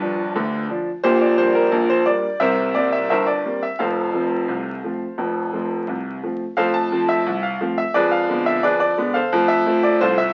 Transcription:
0.00 0.36 G1 medium
0.00 0.37 G2 medium
0.00 0.20 F3 medium
0.00 0.20 D4 medium
0.00 0.66 F4 medium
0.00 0.66 G4 medium
0.00 0.69 B4 medium
0.36 0.64 D2 medium
0.36 0.64 D3 medium
0.69 0.88 F3 medium
0.69 0.89 D4 medium
1.03 1.33 A#1 medium
1.03 1.33 A#2 loud
1.03 1.20 G4 medium
1.03 1.21 C5 loud
1.21 1.38 D5 medium
1.38 1.57 G3 medium
1.38 1.57 A#3 medium
1.38 1.57 D4 medium
1.38 1.55 C5 loud
1.55 1.89 A#4 medium
1.72 2.01 A#1 medium
1.72 2.01 A#2 medium
1.90 2.06 C5 loud
2.06 2.25 G3 medium
2.06 2.26 A#3 medium
2.06 2.26 D4 medium
2.06 2.40 D5 loud
2.40 2.70 C2 medium
2.40 2.70 C3 medium
2.40 2.73 A#4 medium
2.40 2.73 C5 medium
2.40 2.75 E5 loud
2.75 2.94 G3 soft
2.75 2.94 A#3 medium
2.75 2.94 C4 medium
2.75 2.92 D5 medium
2.92 3.09 E5 medium
3.10 3.39 G1 medium
3.10 3.39 G2 medium
3.10 3.26 A#4 medium
3.10 3.27 C5 medium
3.10 3.27 E5 medium
3.27 3.61 D5 medium
3.45 3.64 G3 soft
3.45 3.64 A#3 soft
3.45 3.64 C4 soft
3.63 3.79 E5 medium
3.79 4.09 F1 medium
3.79 4.09 F2 medium
3.79 5.84 A4 medium
3.79 5.84 C5 medium
3.79 5.87 F5 medium
4.14 4.33 F3 soft
4.14 4.33 A3 soft
4.14 4.33 C4 soft
4.48 4.78 C2 medium
4.48 4.78 C3 medium
4.84 5.03 F3 soft
4.84 5.03 A3 soft
4.84 5.03 C4 soft
5.18 5.47 F1 medium
5.18 5.47 F2 medium
5.53 5.72 F3 soft
5.53 5.72 A3 soft
5.53 5.73 C4 soft
5.87 6.17 C2 medium
5.87 6.17 C3 medium
6.23 6.42 F3 soft
6.23 6.42 A3 soft
6.23 6.42 C4 soft
6.57 6.86 F2 medium
6.57 6.77 A3 medium
6.57 6.73 A4 medium
6.57 6.73 C5 medium
6.57 6.74 F5 loud
6.74 7.08 A5 loud
6.92 7.11 F3 medium
6.92 7.11 A3 medium
6.92 7.11 C4 medium
7.09 7.43 E5 loud
7.26 7.55 C2 medium
7.43 7.77 F5 medium
7.61 7.79 F3 medium
7.61 7.80 A3 medium
7.61 7.80 C4 medium
7.78 7.95 E5 medium
7.94 8.24 F2 loud
7.94 8.15 G#3 medium
7.94 8.11 G#4 medium
7.94 8.11 B4 medium
7.94 8.12 D5 loud
8.11 8.46 F5 loud
8.29 8.48 D3 medium
8.29 8.48 G#3 medium
8.29 8.49 B3 medium
8.46 8.63 E5 loud
8.63 8.93 F2 medium
8.63 8.80 G#4 medium
8.63 8.80 B4 medium
8.63 8.78 D5 loud
8.80 9.15 D5 loud
8.98 9.17 D3 medium
8.98 9.17 G#3 medium
8.98 9.17 B3 medium
9.14 9.47 A4 medium
9.14 9.47 C5 medium
9.14 9.49 F5 loud
9.32 9.61 F2 loud
9.32 9.52 A3 medium
9.48 9.83 E5 loud
9.66 9.85 F3 medium
9.66 9.85 A3 medium
9.66 9.86 C4 medium
9.83 10.01 D5 loud
10.01 10.30 C2 loud
10.01 10.17 F4 medium
10.01 10.17 A4 medium
10.01 10.18 C5 loud
10.18 10.33 E5 loud

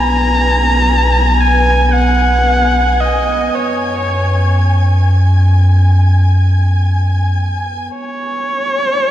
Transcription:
0.00 3.50 B1 medium
0.00 8.05 B3 medium
0.00 8.04 B4 medium
0.00 7.93 G#5 medium
0.00 1.42 A#5 loud
0.00 7.94 G#6 medium
1.41 1.94 G#5 loud
1.93 3.02 F#5 medium
3.01 3.57 D#5 medium
3.55 7.89 F#2 medium
3.55 4.64 C#5 medium
7.94 9.11 C#5 medium
7.94 9.11 G#5 medium
7.94 9.11 G#6 medium

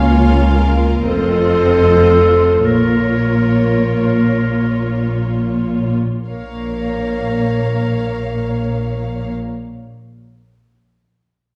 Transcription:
0.00 1.03 C#2 medium
0.00 1.04 C#2 medium
0.00 1.03 A#3 medium
0.00 0.72 C#4 medium
0.00 1.03 F4 medium
0.00 0.53 C#5 medium
0.00 1.04 F5 medium
0.53 1.06 A#4 medium
1.07 2.66 F1 medium
1.07 2.67 F2 medium
1.07 2.66 C4 medium
1.07 2.63 F4 medium
1.07 2.67 A4 medium
1.07 2.66 C5 soft
1.07 2.66 D#5 soft
2.65 5.96 A#1 soft
2.65 5.96 A#2 soft
2.65 5.96 A#3 soft
2.65 5.96 F4 soft
2.65 5.64 A#4 medium
2.65 5.28 C#5 soft
2.65 5.96 C#5 soft
6.27 9.33 A#1 soft
6.27 9.33 A#2 soft
6.27 9.32 A#3 soft
6.27 9.33 A#4 medium
6.27 9.32 C#5 soft
6.27 9.33 F5 soft

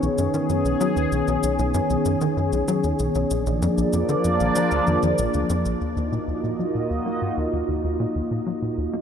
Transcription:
0.00 0.09 B1 medium
0.00 3.27 D#3 medium
0.00 3.27 B3 medium
0.00 3.27 C#4 medium
0.00 5.77 G#4 medium
0.00 3.27 C#5 medium
0.00 high tom medium
0.00 cabasa soft
0.18 0.28 F#2 medium
0.18 cabasa medium
0.34 0.40 D#3 medium
0.34 cabasa soft
0.49 0.64 F#2 medium
0.49 cabasa medium
0.65 0.75 B1 medium
0.65 cabasa soft
0.81 0.96 F#3 medium
0.81 cabasa medium
0.96 1.07 D#2 medium
0.96 cabasa soft
1.12 1.22 B1 medium
1.12 cabasa medium
1.28 1.38 B1 medium
1.28 cabasa soft
1.43 1.58 B1 medium
1.43 cabasa medium
1.59 1.74 B1 loud
1.59 cabasa soft
1.74 1.81 F#2 loud
1.74 cabasa medium
1.90 1.96 B1 medium
1.90 cabasa soft
2.05 2.16 F#2 medium
2.05 cabasa medium
2.21 2.27 D#3 medium
2.21 cabasa soft
2.37 2.52 F#2 medium
2.53 2.63 B1 medium
2.53 cabasa soft
2.68 2.83 F#3 medium
2.68 cabasa medium
2.84 2.94 D#2 medium
2.84 cabasa soft
2.99 3.10 B1 medium
2.99 cabasa medium
3.15 3.25 B1 medium
3.15 cabasa soft
3.31 3.46 A#1 medium
3.31 5.78 F3 medium
3.31 5.78 A#3 medium
3.31 5.78 D4 medium
3.31 5.78 D5 loud
3.31 cabasa medium
3.46 3.61 A#1 loud
3.46 cabasa soft
3.62 3.68 F2 loud
3.62 cabasa medium
3.78 3.84 A#1 medium
3.78 cabasa soft
3.93 4.03 F2 medium
3.93 cabasa medium
4.09 4.15 D3 medium
4.09 cabasa soft
4.24 4.39 F2 medium
4.24 cabasa medium
4.40 4.50 A#1 medium
4.40 high tom medium
4.40 cabasa soft
4.55 4.71 F3 medium
4.55 cabasa medium
4.71 4.82 D2 medium
4.71 cabasa soft
4.87 4.97 F2 medium
4.87 high tom medium
4.87 cabasa soft
5.03 5.13 F2 medium
5.03 high tom medium
5.03 cabasa soft
5.18 5.29 A#1 medium
5.18 cabasa medium
5.34 5.44 D2 medium
5.34 cabasa soft
5.50 5.65 F2 loud
5.50 cabasa medium
5.65 5.76 A#1 medium
5.65 cabasa soft
5.81 5.96 D#2 medium
5.81 9.02 A#3 medium
5.81 9.02 D#4 medium
5.81 9.02 F4 medium
5.81 9.02 F#4 medium
5.81 9.02 D#5 medium
5.96 6.11 D#2 medium
6.12 6.18 A#2 medium
6.28 6.34 D#2 medium
6.43 6.54 A#2 medium
6.59 6.65 F#3 medium
6.75 6.90 A#2 medium
6.90 7.00 D#2 medium
7.06 7.21 A#3 medium
7.22 7.32 G#2 medium
7.37 7.47 D#2 medium
7.53 7.63 D#2 medium
7.68 7.83 D#2 medium
7.84 7.99 D#2 medium
8.00 8.06 A#2 loud
8.16 8.22 D#2 medium
8.31 8.41 A#2 medium
8.46 8.53 F#3 medium
8.62 8.77 A#2 medium
8.78 8.88 D#2 medium
8.93 9.02 A#3 medium

